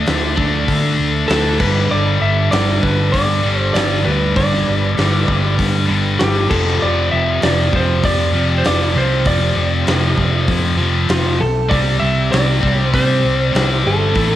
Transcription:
Already playing: distorted electric guitar D3 A3 D4, analog synth pad D4 A4 E5, lead electric guitar D5
0.06 fingered electric bass D2, snare, open hi-hat
0.35 fingered electric bass D2, distorted electric guitar D3 A3 D4, kick
0.68 fingered electric bass D3, kick, open hi-hat
0.99 fingered electric bass D2
1.27 fingered electric bass D2, distorted electric guitar D3 A3 D4, lead electric guitar A4, snare, open hi-hat
1.56 distorted electric guitar G2 D3, analog synth pad G3, kick, crash
1.60 fingered electric bass G1, distorted electric guitar D3 G3, lead electric guitar B4
1.91 fingered electric bass G1, lead electric guitar D5
2.21 fingered electric bass G1, lead electric guitar E5
2.49 fingered electric bass G1, distorted electric guitar G2 D3 G3, lead electric guitar D5, snare, open hi-hat
2.83 fingered electric bass G1, lead electric guitar B4, kick
3.12 fingered electric bass G2, lead electric guitar D5, kick, open hi-hat
3.43 fingered electric bass G1, distorted electric guitar G2 D3 G3
3.61 lead electric guitar C5
3.74 fingered electric bass G1, lead electric guitar D5, snare, open hi-hat
4.03 fingered electric bass D2, distorted electric guitar G2 D3 G3, analog synth pad B4, lead electric guitar B4
4.36 fingered electric bass G1, lead electric guitar D5, kick, open hi-hat
4.54 snare
4.68 fingered electric bass G1
4.94 distorted electric guitar G2 D3 G3, open hi-hat
4.98 fingered electric bass G1, snare
5.28 fingered electric bass G1, kick
5.59 fingered electric bass G2, kick, open hi-hat
5.87 fingered electric bass G1, distorted electric guitar G2 D3 G3
6.19 fingered electric bass G1, lead electric guitar G4, snare, open hi-hat
6.50 fingered electric bass F1, distorted electric guitar F2 C3 F3, analog synth pad F3 C4 G4, lead electric guitar A4, kick, crash
6.67 snare
6.82 fingered electric bass F1, lead electric guitar D5
7.11 fingered electric bass F1, lead electric guitar E5
7.41 fingered electric bass F1, distorted electric guitar F2 C3 F3, lead electric guitar D5, snare, open hi-hat
7.73 fingered electric bass F1, lead electric guitar C5, kick
8.03 fingered electric bass F2, lead electric guitar D5, kick, open hi-hat
8.33 fingered electric bass F1, distorted electric guitar F2 C3 F3
8.58 lead electric guitar C5
8.64 fingered electric bass F1, lead electric guitar D5, snare, open hi-hat
8.93 fingered electric bass C2, distorted electric guitar F2 C3 F3
8.97 lead electric guitar C5
9.25 fingered electric bass F1, lead electric guitar D5, kick, open hi-hat
9.57 fingered electric bass F1
9.85 fingered electric bass F1, distorted electric guitar F2 C3 F3, snare, open hi-hat
10.18 fingered electric bass F1, kick
10.48 fingered electric bass F2, kick, open hi-hat
10.77 fingered electric bass F1, distorted electric guitar F2 C3 F3
11.09 fingered electric bass F1, lead electric guitar F4, snare, open hi-hat
11.40 fingered electric bass B1, lead electric guitar A4
11.69 fingered electric bass C2, distorted electric guitar C3 G3 C4, analog synth pad G4 D5, lead electric guitar D5, kick, open hi-hat
12.00 fingered electric bass C2, lead electric guitar E5
12.32 fingered electric bass C2, lead electric guitar D5, snare, open hi-hat
12.61 fingered electric bass C2, distorted electric guitar C3 G3 C4, kick
12.80 lead electric guitar C5
12.94 fingered electric bass C3, lead electric guitar C5, kick, open hi-hat
13.25 fingered electric bass C2
13.52 fingered electric bass C2, distorted electric guitar C3 G3, open hi-hat
13.56 distorted electric guitar C4, snare
13.86 fingered electric bass G1, lead electric guitar A4
14.13 fingered electric bass A1, distorted electric guitar A2 E3 A3, analog synth pad A3 E4 B4, kick, open hi-hat

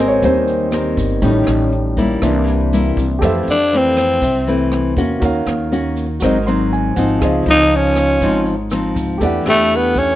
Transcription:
Already playing: upright bass G#1, nylon-string guitar G#3 C4, grand piano A#3 C4 C5 D#5 G#5 C6
0.00 nylon-string guitar G4 A#4
0.08 grand piano C#5
0.22 upright bass D#2, nylon-string guitar D#3, grand piano G3 A#3 C4 C5, kick, closed hi-hat, shaker
0.47 closed hi-hat, shaker
0.72 nylon-string guitar C4 G4 A#4, cross-stick, closed hi-hat, shaker
0.97 upright bass G1, kick, closed hi-hat, shaker
1.22 upright bass A1, nylon-string guitar A2 G3 C#4 D#4, grand piano D#3 G3 C#4, kick, closed hi-hat, shaker
1.47 upright bass A1, cross-stick, closed hi-hat, shaker
1.72 closed hi-hat
1.97 nylon-string guitar G3 A#3 E4, kick, closed hi-hat, shaker
2.22 upright bass C2, nylon-string guitar C3, grand piano E3 A#3 D4, kick, cross-stick, closed hi-hat, shaker
2.47 closed hi-hat, shaker
2.72 nylon-string guitar G3 A#3 E4, closed hi-hat, shaker
2.97 upright bass C2, kick, closed hi-hat, shaker
3.19 upright bass F2, grand piano G4 A4 C5, kick, cross-stick, closed hi-hat
3.23 nylon-string guitar F2 E3 A3 C4, grand piano E5, shaker
3.47 upright bass F2, tenor saxophone D4, closed hi-hat, shaker
3.72 nylon-string guitar E3 A3 C4, closed hi-hat, shaker
3.77 tenor saxophone C4
3.97 cross-stick, closed hi-hat, shaker
4.22 upright bass C2, nylon-string guitar C3, kick, closed hi-hat, shaker
4.47 nylon-string guitar E3 A3 C4, closed hi-hat, shaker
4.72 cross-stick, closed hi-hat
4.96 upright bass E2, nylon-string guitar A#3 C#4 F#4, kick, closed hi-hat, shaker
5.20 upright bass D#2, nylon-string guitar D#3, grand piano F#4 A#4, kick, closed hi-hat, shaker
5.24 grand piano C#5 F5
5.47 upright bass D#2, cross-stick, closed hi-hat, shaker
5.72 nylon-string guitar A#3 C#4 F#4, closed hi-hat, shaker
5.97 closed hi-hat, shaker
6.20 upright bass G#1, nylon-string guitar G#2 F#3 C4, grand piano F#4 A#4, kick, cross-stick, closed hi-hat, shaker
6.24 nylon-string guitar D#4, grand piano C5 D#5
6.47 nylon-string guitar F#3 C4 D#4, grand piano C6, closed hi-hat, shaker
6.72 grand piano G#5, closed hi-hat
6.96 upright bass G#1, nylon-string guitar F3 C4 D#4, grand piano F#5, kick, closed hi-hat, shaker
7.19 upright bass C#2, nylon-string guitar C#3, grand piano F4 G#4, kick, cross-stick, closed hi-hat, shaker
7.23 grand piano C5 D#5
7.46 upright bass C#2, nylon-string guitar F3 D#4, closed hi-hat, shaker
7.50 tenor saxophone D#4
7.72 closed hi-hat
7.76 tenor saxophone C#4
7.96 cross-stick, closed hi-hat, shaker
8.21 upright bass G#1, nylon-string guitar G#2 F3 C4 D#4, kick, closed hi-hat, shaker
8.46 closed hi-hat, shaker
8.71 nylon-string guitar F3 C4 D#4, cross-stick, closed hi-hat, shaker
8.96 upright bass C#2, kick, closed hi-hat, shaker
9.18 upright bass E2, nylon-string guitar E3 A3, grand piano G4 A4, kick, closed hi-hat, shaker
9.22 nylon-string guitar D4 G4, grand piano D5 F#5
9.46 upright bass E2, nylon-string guitar A3 D4 G4, tenor saxophone A3, cross-stick, closed hi-hat, shaker
9.70 closed hi-hat
9.76 tenor saxophone B3
9.95 tenor saxophone C#4, kick, closed hi-hat, shaker

